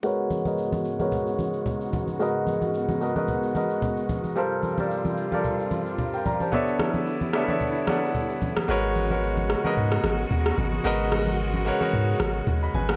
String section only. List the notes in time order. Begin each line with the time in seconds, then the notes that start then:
0.04 G#2 C#3 B3 F#4
4.36 G2 C3 G3 F4
6.52 D3 D4 E4
8.69 C#3 G#3 B3 F#4